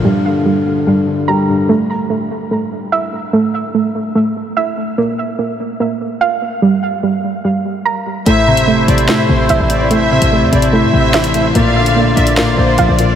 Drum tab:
HH |----------------|----------------|----------------|----------------|
SD |----------------|----------------|----------------|----------------|

HH |----------------|x--x--xx----x-x-|x--x--xx-----xx-|x--x--xx----x-x-|
SD |----------------|--------o-------|------------o---|--------o-------|